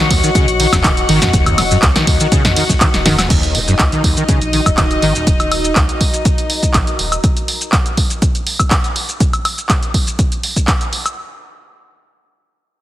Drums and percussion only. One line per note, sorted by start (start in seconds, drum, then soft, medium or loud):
0.11 kick medium
0.11 open hi-hat medium
0.11 ride medium
0.23 closed hi-hat soft
0.23 shaker medium
0.35 kick loud
0.35 closed hi-hat medium
0.35 shaker medium
0.48 closed hi-hat medium
0.48 shaker soft
0.60 open hi-hat loud
0.60 ride medium
0.73 kick medium
0.73 snare medium
0.73 closed hi-hat soft
0.73 mid tom medium
0.73 high woodblock medium
0.73 shaker medium
0.84 kick loud
0.84 clap loud
0.84 closed hi-hat medium
0.84 shaker medium
0.97 closed hi-hat medium
0.97 shaker soft
1.09 open hi-hat medium
1.09 ride medium
1.22 snare medium
1.22 closed hi-hat soft
1.22 mid tom medium
1.22 shaker medium
1.33 kick loud
1.33 closed hi-hat medium
1.33 shaker medium
1.46 closed hi-hat medium
1.46 mid tom loud
1.46 high woodblock medium
1.46 shaker soft
1.58 snare soft
1.58 open hi-hat loud
1.58 ride medium
1.58 high woodblock medium
1.71 closed hi-hat soft
1.71 shaker medium
1.82 kick loud
1.82 clap loud
1.82 closed hi-hat medium
1.82 shaker medium
1.96 snare medium
1.96 closed hi-hat medium
1.96 shaker soft
2.07 kick medium
2.07 open hi-hat medium
2.07 ride medium
2.20 closed hi-hat soft
2.20 shaker medium
2.32 kick loud
2.32 closed hi-hat medium
2.32 shaker medium
2.45 snare medium
2.45 closed hi-hat medium
2.45 mid tom loud
2.45 shaker soft
2.56 open hi-hat loud
2.56 ride medium
2.69 kick medium
2.69 closed hi-hat soft
2.69 shaker medium
2.81 kick loud
2.81 clap loud
2.81 closed hi-hat medium
2.81 shaker medium
2.94 snare medium
2.94 closed hi-hat medium
2.94 shaker soft
3.06 snare medium
3.06 mid tom loud
3.06 open hi-hat medium
3.06 ride medium
3.18 snare medium
3.18 closed hi-hat soft
3.18 high woodblock medium
3.18 shaker medium
3.30 kick loud
3.30 closed hi-hat medium
3.30 crash medium
3.30 shaker medium
3.43 closed hi-hat medium
3.43 shaker soft
3.55 open hi-hat loud
3.68 closed hi-hat soft
3.68 shaker medium
3.79 kick loud
3.79 clap loud
3.79 closed hi-hat medium
3.79 shaker medium
3.92 closed hi-hat medium
3.92 shaker soft
4.04 kick medium
4.04 open hi-hat medium
4.17 closed hi-hat soft
4.17 shaker medium
4.29 kick loud
4.29 closed hi-hat medium
4.29 shaker medium
4.41 closed hi-hat medium
4.41 shaker soft
4.53 open hi-hat loud
4.66 kick medium
4.66 closed hi-hat soft
4.66 high woodblock medium
4.66 shaker medium
4.77 kick loud
4.77 clap loud
4.77 closed hi-hat medium
4.77 high woodblock medium
4.77 shaker medium
4.91 closed hi-hat medium
4.91 shaker soft
5.02 open hi-hat medium
5.15 closed hi-hat soft
5.15 shaker medium
5.27 kick loud
5.27 closed hi-hat medium
5.27 shaker medium
5.40 closed hi-hat soft
5.40 high woodblock medium
5.40 shaker soft
5.52 open hi-hat loud
5.52 high woodblock medium
5.64 closed hi-hat soft
5.64 shaker medium
5.76 kick loud
5.76 clap loud
5.76 closed hi-hat medium
5.76 shaker medium
5.89 closed hi-hat soft
5.89 shaker soft
6.01 kick medium
6.01 open hi-hat medium
6.14 closed hi-hat soft
6.14 shaker medium
6.25 kick loud
6.25 closed hi-hat medium
6.25 shaker medium
6.38 closed hi-hat medium
6.38 shaker soft
6.50 open hi-hat loud
6.63 kick medium
6.63 closed hi-hat soft
6.63 shaker medium
6.74 kick loud
6.74 clap loud
6.74 closed hi-hat medium
6.74 shaker medium
6.87 closed hi-hat soft
6.87 shaker soft
6.99 open hi-hat medium
7.12 closed hi-hat soft
7.12 high woodblock medium
7.12 shaker medium
7.24 kick loud
7.24 closed hi-hat medium
7.24 shaker medium
7.37 closed hi-hat medium
7.37 shaker soft
7.48 open hi-hat loud
7.61 closed hi-hat soft
7.61 shaker medium
7.72 kick loud
7.72 clap loud
7.72 closed hi-hat medium
7.72 shaker soft
7.86 closed hi-hat soft
7.86 shaker soft
7.97 kick medium
7.97 open hi-hat medium
8.10 closed hi-hat soft
8.10 shaker medium
8.22 kick loud
8.22 closed hi-hat medium
8.22 shaker medium
8.35 closed hi-hat soft
8.35 shaker soft
8.47 open hi-hat loud
8.59 kick medium
8.59 closed hi-hat soft
8.59 high woodblock medium
8.59 shaker medium
8.71 kick loud
8.71 clap loud
8.71 closed hi-hat medium
8.71 high woodblock medium
8.71 shaker soft
8.84 closed hi-hat soft
8.84 shaker soft
8.96 open hi-hat medium
9.09 closed hi-hat soft
9.09 shaker medium
9.20 kick loud
9.20 closed hi-hat medium
9.20 shaker medium
9.33 closed hi-hat soft
9.33 high woodblock medium
9.33 shaker soft
9.45 open hi-hat loud
9.45 high woodblock medium
9.58 closed hi-hat soft
9.58 shaker medium
9.69 kick loud
9.69 clap loud
9.69 closed hi-hat medium
9.69 shaker medium
9.83 closed hi-hat soft
9.83 shaker soft
9.94 kick medium
9.94 open hi-hat medium
10.07 closed hi-hat soft
10.07 shaker medium
10.19 kick loud
10.19 closed hi-hat medium
10.19 shaker medium
10.32 closed hi-hat soft
10.32 shaker soft
10.43 open hi-hat loud
10.56 kick medium
10.56 closed hi-hat soft
10.56 shaker medium
10.68 kick loud
10.68 clap loud
10.68 closed hi-hat medium
10.68 shaker soft
10.81 closed hi-hat soft
10.81 shaker soft
10.93 open hi-hat medium
11.06 closed hi-hat soft
11.06 high woodblock medium
11.06 shaker medium